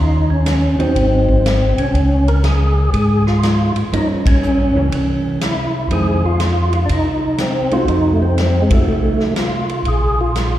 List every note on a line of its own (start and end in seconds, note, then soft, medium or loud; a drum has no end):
0.00 0.75 D#2 medium
0.00 0.30 D#4 medium
0.30 0.76 C#4 medium
0.46 snare medium
0.46 hi-hat pedal medium
0.46 ride medium
0.78 0.87 D#2 soft
0.78 1.42 F#3 medium
0.78 1.42 C4 medium
0.78 1.74 C4 medium
0.78 1.42 D#4 medium
0.78 ride soft
0.96 1.74 G#1 medium
0.96 kick soft
0.96 ride soft
1.29 kick soft
1.46 snare medium
1.46 hi-hat pedal medium
1.46 ride medium
1.77 1.93 C2 medium
1.77 2.29 C#4 medium
1.77 ride soft
1.94 2.89 C#2 medium
1.94 kick soft
1.94 ride soft
2.28 2.43 A#4 medium
2.28 ride soft
2.44 2.90 G#4 medium
2.44 snare medium
2.44 hi-hat pedal soft
2.44 ride medium
2.93 3.72 G#2 medium
2.93 3.24 G#4 medium
2.93 kick soft
2.93 ride soft
3.27 3.73 F4 medium
3.27 snare soft
3.43 snare medium
3.43 hi-hat pedal medium
3.43 ride medium
3.76 3.84 G#2 soft
3.76 ride soft
3.93 4.71 G2 medium
3.93 4.22 F3 medium
3.93 4.23 A#3 medium
3.93 4.23 C#4 medium
3.93 4.08 D#4 medium
3.93 kick soft
3.93 ride medium
4.26 4.88 C#4 medium
4.26 kick medium
4.26 ride medium
4.43 hi-hat pedal soft
4.75 4.90 C#2 medium
4.75 5.38 E3 medium
4.75 5.39 A#3 medium
4.75 5.39 C#4 medium
4.92 5.87 C2 medium
4.92 kick soft
4.92 ride medium
5.41 5.89 E4 medium
5.41 snare medium
5.41 hi-hat pedal medium
5.41 ride medium
5.90 6.86 F2 medium
5.90 6.20 D#3 medium
5.90 6.20 G#3 medium
5.90 6.21 C4 medium
5.90 6.25 G#4 medium
5.90 kick soft
5.90 ride soft
6.26 6.74 F4 medium
6.40 snare soft
6.40 hi-hat pedal soft
6.40 ride medium
6.73 6.80 F4 medium
6.73 ride soft
6.86 7.84 C2 medium
6.86 6.90 D4 medium
6.86 kick soft
6.86 ride medium
6.92 7.42 D#4 medium
7.38 7.74 C4 medium
7.38 snare medium
7.38 hi-hat pedal soft
7.38 ride medium
7.71 8.35 A3 medium
7.71 8.35 D#4 medium
7.71 7.90 F4 medium
7.71 8.35 F#4 medium
7.71 ride soft
7.88 8.67 F2 medium
7.88 8.13 D#4 medium
7.88 kick soft
7.88 ride soft
8.12 8.22 A3 medium
8.22 8.63 C4 medium
8.38 snare medium
8.38 hi-hat pedal soft
8.38 ride medium
8.62 8.71 G#3 medium
8.70 8.79 F2 soft
8.70 9.34 F3 medium
8.70 9.34 A3 medium
8.70 9.34 A3 loud
8.70 9.34 D#4 medium
8.70 9.34 F#4 medium
8.70 kick medium
8.70 ride medium
8.87 9.82 C2 medium
9.20 snare soft
9.36 9.89 F4 medium
9.36 snare medium
9.36 hi-hat pedal medium
9.36 ride medium
9.69 ride soft
9.85 10.59 A#1 loud
9.85 10.21 G#4 medium
9.85 kick soft
9.85 ride soft
10.21 10.57 F4 medium
10.35 snare medium
10.35 hi-hat pedal soft
10.35 ride medium